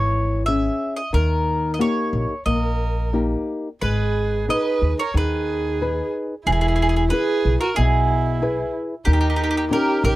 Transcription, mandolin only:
0.00 0.42 C#5 medium
0.46 0.96 E5 medium
0.96 1.12 D#5 medium
1.14 1.73 A#4 medium
1.74 1.80 D#5 medium
1.81 2.45 C#5 medium
2.46 3.10 D#5 medium
3.81 4.44 B4 medium
4.50 4.96 D#5 medium
4.99 5.14 C#5 medium
5.17 6.11 B4 medium
6.47 6.51 G#4 medium
6.52 6.60 G#4 medium
6.61 6.67 G#4 medium
6.68 6.75 G#4 soft
6.76 6.81 G#4 medium
6.82 6.88 G#4 medium
6.89 6.95 G#4 medium
6.96 7.04 G#4 medium
7.10 7.56 B4 medium
7.61 7.76 A#4 medium
7.76 8.70 G#4 medium
9.05 9.12 G4 medium
9.13 9.19 G4 medium
9.21 9.28 G4 medium
9.30 9.35 G4 soft
9.36 9.42 G4 medium
9.44 9.49 G4 medium
9.51 9.56 G4 medium
9.57 9.64 G4 medium
9.73 10.02 A#4 medium
10.05 10.16 A#4 medium

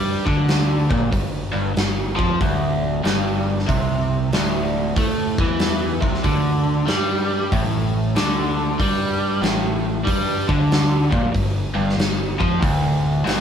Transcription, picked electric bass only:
0.00 0.23 G2 medium
0.27 0.86 D2 loud
0.91 1.11 A#1 medium
1.13 1.52 G1 medium
1.54 1.75 G1 loud
1.76 2.15 G1 medium
2.19 2.39 F2 medium
2.41 3.00 D1 medium
3.04 3.64 G1 medium
3.69 4.29 C2 medium
4.31 4.91 D1 medium
4.96 5.35 A2 medium
5.39 5.98 E2 medium
6.02 6.22 C2 medium
6.24 6.84 D2 medium
6.87 7.47 G2 medium
7.52 8.12 A1 medium
8.15 8.75 D2 loud
8.79 9.39 G2 medium
9.42 10.02 A1 medium
10.07 10.46 G2 loud
10.49 11.09 D2 medium
11.12 11.33 A#1 medium
11.34 11.73 G1 medium
11.75 11.96 G1 medium
11.97 12.37 G1 medium
12.41 12.61 F2 loud
12.62 13.22 D1 medium
13.26 13.41 G1 medium

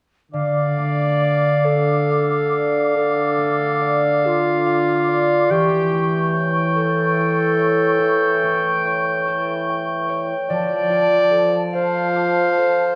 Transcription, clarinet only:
0.34 1.67 D5 medium
1.66 2.95 A4 medium
2.96 4.28 A4 medium
4.26 5.53 F4 medium
5.51 6.49 G4 medium
6.75 10.06 A4 medium
10.49 11.70 D5 medium
11.75 12.95 C5 medium

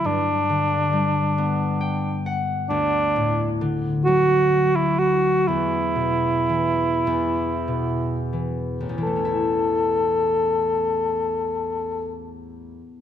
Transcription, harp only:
0.04 2.74 G2 soft
0.49 2.74 D3 soft
0.93 2.74 G3 soft
1.38 4.49 B3 soft
1.81 2.32 G5 medium
2.26 3.87 F#5 medium
2.70 5.51 D2 soft
3.16 3.64 A2 soft
3.61 5.51 D3 soft
4.07 5.51 F#3 medium
5.48 7.06 E2 soft
5.96 7.11 B2 soft
6.49 7.11 E3 soft
7.07 8.88 E2 soft
7.68 9.06 B2 soft
8.33 8.97 E3 soft
8.80 12.70 A1 soft
8.89 12.79 E2 soft
8.98 12.88 E3 soft
9.07 12.39 A3 soft
9.16 12.26 C#4 soft
9.25 12.35 E4 soft

